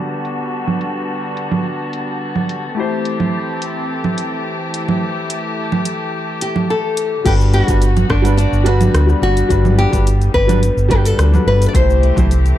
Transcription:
Already playing: string section D3 G3 B3 F#4, grand piano G3 D4 F#4 B4, synth texture A5
0.25 closed hi-hat
0.68 low conga
0.81 closed hi-hat
1.37 closed hi-hat
1.51 low conga
1.93 closed hi-hat
2.36 low conga
2.49 closed hi-hat
2.75 string section E3 A3 C4 G4, grand piano A3 E4 G4
2.80 grand piano C5
3.05 closed hi-hat
3.20 low conga
3.62 closed hi-hat
4.04 low conga
4.18 closed hi-hat
4.74 closed hi-hat
4.88 low conga
5.30 closed hi-hat
5.72 low conga
5.85 closed hi-hat
6.41 nylon-string guitar G4, closed hi-hat
6.56 low conga
6.70 nylon-string guitar A4
6.97 closed hi-hat
7.24 fingered electric bass G1, string section D3 G3 B3 F#4, grand piano G3 D4 F#4 B4, nylon-string guitar G4, kick, closed hi-hat, crash, shaker
7.41 shaker
7.53 nylon-string guitar F#4, closed hi-hat
7.67 fingered electric bass G1, grand piano G3 D4 F#4 B4, kick, closed hi-hat, shaker
7.82 closed hi-hat, shaker
7.97 closed hi-hat, low conga, shaker
8.10 fingered electric bass G1, nylon-string guitar D4, kick, cross-stick
8.22 grand piano G3 D4 F#4 B4, closed hi-hat, shaker
8.37 nylon-string guitar D4, closed hi-hat, shaker
8.52 fingered electric bass G1, shaker
8.64 grand piano G3 D4 F#4 B4, nylon-string guitar F#4, closed hi-hat
8.81 closed hi-hat, low conga, shaker
8.94 fingered electric bass D2, cross-stick, closed hi-hat, shaker
9.07 grand piano G3 D4 F#4 B4, shaker
9.21 fingered electric bass G1, nylon-string guitar F#4
9.37 closed hi-hat, shaker
9.49 fingered electric bass G1, grand piano G3 D4 F#4 B4, kick, closed hi-hat, shaker
9.65 low conga, shaker
9.78 nylon-string guitar G4, closed hi-hat
9.91 fingered electric bass G1, grand piano G3 D4 F#4 B4, kick, closed hi-hat, shaker
10.07 closed hi-hat, shaker
10.22 closed hi-hat, shaker
10.34 fingered electric bass G1, nylon-string guitar B4, kick
10.47 grand piano G3 D4 F#4 B4, closed hi-hat, low conga, shaker
10.63 closed hi-hat, shaker
10.77 fingered electric bass G1, shaker
10.89 grand piano G3 D4 F#4 B4, nylon-string guitar G4, kick, closed hi-hat
11.05 nylon-string guitar A4, closed hi-hat, shaker
11.18 fingered electric bass D2, cross-stick, closed hi-hat, shaker
11.32 grand piano G3 D4 F#4 B4, low conga, shaker
11.46 fingered electric bass G1, nylon-string guitar B4
11.62 closed hi-hat, shaker
11.68 nylon-string guitar D5
11.73 fingered electric bass C2, string section E3 A3 C4 G4, grand piano A3 E4 G4 C5, nylon-string guitar C5, kick, closed hi-hat, shaker
11.90 shaker
12.03 closed hi-hat
12.16 fingered electric bass C2, grand piano A3 E4 G4 C5, kick, closed hi-hat, low conga, shaker
12.31 closed hi-hat, shaker
12.46 closed hi-hat, shaker

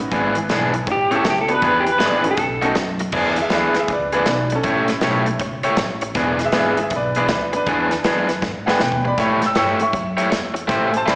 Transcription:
Already playing: upright bass A1
0.00 muted overdriven electric guitar stroke
0.11 upright bass G#1, overdriven electric guitar E3 B3 D4 G#4, kick, closed hi-hat
0.35 muted overdriven electric guitar stroke, closed hi-hat
0.49 upright bass B1, overdriven electric guitar E3 B3 D4 G#4, snare, closed hi-hat
0.74 muted overdriven electric guitar stroke, closed hi-hat
0.87 upright bass A1, muted overdriven electric guitar stroke, kick, closed hi-hat
0.92 clean electric guitar G4
1.10 overdriven electric guitar A3 E4 G4 C#5, grand piano B3 C#4 E4 G4, closed hi-hat
1.16 clean electric guitar A4
1.24 upright bass C#2, muted overdriven electric guitar stroke, snare, closed hi-hat
1.30 clean electric guitar G4
1.41 clean electric guitar A4
1.49 grand piano B3 D4 F#4 B4, muted overdriven electric guitar stroke, closed hi-hat
1.55 clean electric guitar B4
1.62 upright bass E2, overdriven electric guitar E3 B3 D4 G#4, kick, closed hi-hat
1.67 clean electric guitar B4
1.80 clean electric guitar G4
1.86 muted overdriven electric guitar stroke, closed hi-hat
1.92 clean electric guitar B4
1.99 upright bass A1, overdriven electric guitar E3 B3 D4 G#4, snare, closed hi-hat
2.05 clean electric guitar D5
2.18 clean electric guitar B4
2.24 grand piano C#4 D#4 F#4 A4, muted overdriven electric guitar stroke, closed hi-hat
2.31 clean electric guitar A4
2.37 upright bass B1, muted overdriven electric guitar stroke, kick, closed hi-hat
2.62 overdriven electric guitar B2 A3 D#4 F#4, grand piano C#4 D#4 F#4 A4, closed hi-hat
2.75 upright bass F#2, muted overdriven electric guitar stroke, snare, closed hi-hat
2.99 muted overdriven electric guitar stroke, closed hi-hat
3.12 upright bass E2, overdriven electric guitar E3 B3 D4 G#4, kick, crash
3.36 grand piano D#5, muted overdriven electric guitar stroke, closed hi-hat
3.41 grand piano G#4 E5
3.50 upright bass D2, overdriven electric guitar E3 B3 D4 G#4, snare, closed hi-hat
3.54 grand piano G#4 E5
3.75 muted overdriven electric guitar stroke, snare, closed hi-hat
3.79 grand piano G#4 E5
3.88 upright bass C#2, muted overdriven electric guitar stroke, kick, closed hi-hat
3.93 grand piano B4 D5
4.12 overdriven electric guitar E3 B3 D4 G#4, grand piano B4 D5, closed hi-hat
4.26 upright bass B1, muted overdriven electric guitar stroke, snare, closed hi-hat
4.30 grand piano B4 D5
4.50 muted overdriven electric guitar stroke, closed hi-hat
4.55 grand piano C#4 A4
4.63 upright bass A1, overdriven electric guitar A3 E4 G4 C#5, kick, closed hi-hat
4.88 muted overdriven electric guitar stroke, snare, closed hi-hat
5.01 upright bass B1, overdriven electric guitar A3 E4 G4 C#5, snare, closed hi-hat
5.26 muted overdriven electric guitar stroke, closed hi-hat
5.39 upright bass C#2, muted overdriven electric guitar stroke, kick, closed hi-hat
5.63 overdriven electric guitar A3 E4 G4 C#5, closed hi-hat
5.77 upright bass A1, muted overdriven electric guitar stroke, snare, closed hi-hat
6.01 muted overdriven electric guitar stroke, closed hi-hat
6.15 upright bass E1, overdriven electric guitar E3 B3 D4 G#4, kick, snare, closed hi-hat
6.39 muted overdriven electric guitar stroke, snare, closed hi-hat
6.44 grand piano G#4 E5
6.52 upright bass G#1, overdriven electric guitar E3 B3 D4 G#4, snare, closed hi-hat
6.58 grand piano G#4 E5
6.77 grand piano G#4, muted overdriven electric guitar stroke, closed hi-hat
6.82 grand piano E5
6.90 upright bass B1, muted overdriven electric guitar stroke, kick, closed hi-hat
6.96 grand piano B4 D5
7.15 overdriven electric guitar E3 B3 D4 G#4, grand piano B4 D5, closed hi-hat
7.28 upright bass D2, grand piano B4 D5, muted overdriven electric guitar stroke, snare, closed hi-hat
7.53 grand piano D4 B4, muted overdriven electric guitar stroke, closed hi-hat
7.66 upright bass E2, overdriven electric guitar E3 B3 D4 G#4, kick, closed hi-hat
7.91 muted overdriven electric guitar stroke, snare, closed hi-hat
8.04 upright bass F#2, overdriven electric guitar E3 B3 D4 G#4, snare, closed hi-hat
8.29 muted overdriven electric guitar stroke, snare, closed hi-hat
8.42 upright bass G#2, muted overdriven electric guitar stroke, kick, snare
8.67 overdriven electric guitar E3 B3 D4 G#4, grand piano B4 G5, snare
8.80 upright bass B2, grand piano B4 G5, muted overdriven electric guitar stroke, snare
8.92 floor tom
9.05 grand piano D5 B5, muted overdriven electric guitar stroke, floor tom
9.18 upright bass A2, overdriven electric guitar A3 E4 G4 C#5, grand piano G5 B5, kick, snare, closed hi-hat
9.42 grand piano G5, muted overdriven electric guitar stroke, snare, closed hi-hat
9.46 grand piano E6
9.55 upright bass G2, overdriven electric guitar A3 E4 G4 C#5, grand piano G5 E6, snare, closed hi-hat
9.80 grand piano E5 C#6, muted overdriven electric guitar stroke, closed hi-hat
9.93 upright bass F#2, muted overdriven electric guitar stroke, kick, closed hi-hat
10.17 overdriven electric guitar A3 E4 G4 C#5, closed hi-hat
10.30 upright bass E2, muted overdriven electric guitar stroke, snare, closed hi-hat
10.54 muted overdriven electric guitar stroke, closed hi-hat
10.68 upright bass A1, overdriven electric guitar A3 E4 G4 C5, kick, snare, closed hi-hat
10.92 grand piano G#5, muted overdriven electric guitar stroke, closed hi-hat
10.96 grand piano C5 A5
11.06 upright bass B1, overdriven electric guitar A3 E4 G4 C5, grand piano D5, snare, closed hi-hat
11.10 grand piano B5

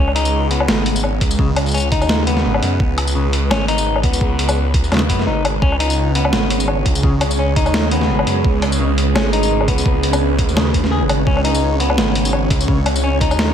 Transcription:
Already playing: detuned saw bass C#2, synth drone C#3 G#3 B4, clean electric guitar C#4
0.08 low woodblock
0.15 clean electric guitar D#4, closed hi-hat
0.25 tambourine
0.51 clean electric guitar B3, closed hi-hat
0.60 low woodblock
0.68 detuned saw bass G#1, snare, closed hi-hat
0.86 closed hi-hat
0.96 tambourine
1.04 low woodblock
1.21 detuned saw bass C#2, kick, closed hi-hat
1.31 tambourine
1.39 detuned saw bass C#2, clean electric guitar C#3, kick
1.56 closed hi-hat, low woodblock
1.66 tambourine
1.68 tambourine
1.71 clean electric guitar C#4, tambourine
1.74 tambourine
1.77 tambourine
1.80 tambourine
1.92 clean electric guitar D#4, kick, closed hi-hat
2.01 detuned saw bass D#2, tambourine, low woodblock
2.09 snare, closed hi-hat
2.27 clean electric guitar B3, closed hi-hat
2.37 snare
2.45 detuned saw bass G#1
2.54 low woodblock
2.62 detuned saw bass F#2, closed hi-hat
2.80 detuned saw bass C#2, kick
2.98 closed hi-hat, low woodblock
3.07 tambourine
3.15 clean electric guitar C#3
3.33 closed hi-hat
3.51 detuned saw bass G#1, clean electric guitar C#4, snare, closed hi-hat, low woodblock
3.68 clean electric guitar D#4, closed hi-hat
3.78 tambourine
3.96 low woodblock
4.03 detuned saw bass C#2, clean electric guitar B3, kick, closed hi-hat
4.13 tambourine
4.21 detuned saw bass C#2, kick
4.39 closed hi-hat
4.49 tambourine, low woodblock
4.74 kick, closed hi-hat
4.84 detuned saw bass D#2, tambourine
4.92 clean electric guitar C#3, snare, closed hi-hat, low woodblock
4.94 snare
4.97 snare
4.99 snare
5.09 detuned saw bass F#2, clean electric guitar B3, kick, closed hi-hat
5.19 snare
5.27 detuned saw bass G#1, clean electric guitar D#4
5.45 closed hi-hat, low woodblock
5.62 detuned saw bass C#2, clean electric guitar C#4, synth texture C#4 C#5, synth drone G#4, kick
5.72 low woodblock
5.80 clean electric guitar D#4, closed hi-hat
5.90 tambourine
6.15 clean electric guitar B3, closed hi-hat
6.25 low woodblock
6.33 detuned saw bass G#1, snare, closed hi-hat
6.50 closed hi-hat
6.60 tambourine
6.68 low woodblock
6.86 detuned saw bass C#2, kick, closed hi-hat
6.95 tambourine
7.03 detuned saw bass C#2, clean electric guitar C#3, kick
7.21 closed hi-hat, low woodblock
7.31 tambourine
7.39 clean electric guitar C#4
7.56 clean electric guitar D#4, kick, closed hi-hat
7.66 detuned saw bass D#2, tambourine, low woodblock
7.74 snare, closed hi-hat
7.91 clean electric guitar B3, closed hi-hat
8.01 snare
8.09 detuned saw bass G#1
8.19 low woodblock
8.27 detuned saw bass F#2, closed hi-hat
8.45 detuned saw bass C#2, synth texture B4, kick
8.62 closed hi-hat, low woodblock
8.72 tambourine
8.80 clean electric guitar C#3
8.98 closed hi-hat
9.15 detuned saw bass G#1, clean electric guitar C#4, snare, closed hi-hat, low woodblock
9.33 clean electric guitar D#4, closed hi-hat
9.43 tambourine
9.61 low woodblock
9.68 detuned saw bass C#2, clean electric guitar B3, kick, closed hi-hat
9.78 tambourine
9.86 detuned saw bass C#2, kick
10.03 closed hi-hat
10.13 tambourine, low woodblock
10.39 kick, closed hi-hat
10.48 detuned saw bass D#2, tambourine
10.56 clean electric guitar C#3, snare, closed hi-hat, low woodblock
10.74 kick, closed hi-hat
10.84 snare
10.92 clean electric guitar G#4
11.01 detuned saw bass G#1
11.09 closed hi-hat, low woodblock
11.27 detuned saw bass C#2, clean electric guitar C#4, synth texture C#5, kick
11.37 low woodblock
11.44 clean electric guitar D#4, closed hi-hat
11.55 tambourine
11.80 clean electric guitar B3, closed hi-hat
11.90 low woodblock
11.97 detuned saw bass G#1, snare, closed hi-hat
12.15 closed hi-hat
12.25 tambourine
12.33 low woodblock
12.50 detuned saw bass C#2, kick, closed hi-hat
12.61 tambourine
12.68 detuned saw bass C#2, clean electric guitar C#3, kick
12.86 closed hi-hat, low woodblock
12.96 tambourine
13.04 clean electric guitar C#4
13.21 clean electric guitar D#4, kick, closed hi-hat
13.31 detuned saw bass D#2, tambourine, low woodblock
13.39 snare, closed hi-hat

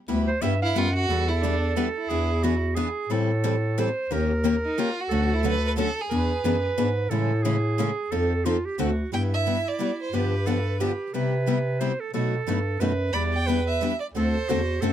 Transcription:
0.08 bass clarinet D2, steel-string acoustic guitar G3 B3 E4 G4
0.28 clarinet C5
0.42 bass clarinet G2, steel-string acoustic guitar G3 B3 E4 G4, clarinet E5
0.62 violin E4, clarinet F5
0.75 bass clarinet F#2, steel-string acoustic guitar G3 B3 E4 G4, violin F4, clarinet F#5
0.96 violin F#4
1.09 bass clarinet E2, steel-string acoustic guitar E3 G3 B3 D4 E4 G4 B4, clarinet A4
1.29 violin E4
1.42 steel-string acoustic guitar E3 G3 B3 D4 E4 G4 B4, violin D4
1.76 steel-string acoustic guitar E3 G3 B3 D4 E4 G4 B4, violin B3
1.98 violin E4
2.08 bass clarinet E2, steel-string acoustic guitar E3 B3 D4 G#4 B4, clarinet G#4
2.43 steel-string acoustic guitar E3 B3 D4 G#4 B4, clarinet F#4
2.75 steel-string acoustic guitar E3 B3 D4 G#4 B4, clarinet G#4
3.09 bass clarinet A2, steel-string acoustic guitar E3 G3 C4 E4 A4, clarinet A4
3.44 steel-string acoustic guitar E3 G3 C4 E4 A4
3.78 steel-string acoustic guitar E3 G3 C4 E4 A4, clarinet C5
4.09 bass clarinet D#2, steel-string acoustic guitar D#3 A#3 C#4 G4 A#4, clarinet A#4
4.44 steel-string acoustic guitar D#3 A#3 C#4 G4 A#4
4.65 violin D#4
4.78 steel-string acoustic guitar D#3 A#3 C#4 G4 A#4, violin F4
5.00 violin F#4
5.09 bass clarinet D2, steel-string acoustic guitar D3 F#3 A3 C#4 F#4 A4, clarinet A4
5.34 violin E4
5.43 steel-string acoustic guitar D3 F#3 A3 C#4 F#4 A4
5.47 violin B4
5.67 violin B4
5.76 steel-string acoustic guitar D3 F#3 A3 C#4 F#4 A4, violin A4
6.01 violin G#4
6.09 bass clarinet E2, steel-string acoustic guitar E3 B3 D4 G#4 B4, clarinet B4
6.43 bass clarinet F#2, steel-string acoustic guitar E3 B3 D4 G#4 B4
6.77 bass clarinet G#2, steel-string acoustic guitar E3 B3 D4 G#4 B4
7.10 bass clarinet A2, steel-string acoustic guitar C#3 E3 G#3 A3 C#4 E4 G#4 A4, clarinet A4
7.43 steel-string acoustic guitar C#3 E3 G#3 A3 C#4 E4 G#4 A4, clarinet G#4
7.78 steel-string acoustic guitar C#3 E3 G#3 A3 C#4 E4 G#4 A4
8.10 bass clarinet F2, steel-string acoustic guitar F3 C4 D#4 A4, clarinet A4
8.45 steel-string acoustic guitar F3 C4 D#4 A4, clarinet F4
8.65 clarinet G4
8.78 bass clarinet D2, steel-string acoustic guitar D3 A3 C4 F#4 A4, clarinet F#4
9.11 bass clarinet G2, steel-string acoustic guitar G3 B3 E4 G4, clarinet E4, violin G5
9.34 violin E5
9.46 steel-string acoustic guitar G3 B3 E4 G4
9.68 violin D5
9.79 steel-string acoustic guitar G3 B3 E4 G4
10.03 violin C5
10.12 bass clarinet G2, steel-string acoustic guitar D3 F3 B3 D4 G4, clarinet G4, violin B4
10.46 steel-string acoustic guitar D3 F3 B3 D4 G4, clarinet A4
10.80 steel-string acoustic guitar D3 F3 B3 D4 G4, clarinet G4
11.12 bass clarinet C3, steel-string acoustic guitar C3 G3 B3 E4 G4, clarinet B4
11.46 steel-string acoustic guitar C3 G3 B3 E4 G4
11.80 steel-string acoustic guitar C3 G3 B3 E4 G4, clarinet C5
12.00 clarinet A4
12.13 bass clarinet B2, steel-string acoustic guitar B2 F#3 A3 D#4 F#4 B4, clarinet A4
12.46 bass clarinet G2, steel-string acoustic guitar B2 F#3 A3 D#4 F#4 B4
12.79 bass clarinet F#2, steel-string acoustic guitar B2 F#3 A3 D#4 F#4 B4, clarinet B4
13.12 bass clarinet E2, steel-string acoustic guitar E3 G3 B3 D4 E4 G4 B4, clarinet D5, violin B5
13.34 violin G5
13.47 steel-string acoustic guitar E3 G3 B3 D4 E4 G4 B4, clarinet B4
13.67 violin E5
13.81 steel-string acoustic guitar E3 G3 B3 D4 E4 G4 B4
14.00 violin D5
14.13 bass clarinet D2, steel-string acoustic guitar D3 A3 C4 F#4 A4, clarinet A4, violin C5
14.48 bass clarinet E2, steel-string acoustic guitar D3 A3 C4 F#4 A4, clarinet F#4
14.81 bass clarinet F#2, steel-string acoustic guitar D3 A3 C4 F#4 A4, clarinet A4

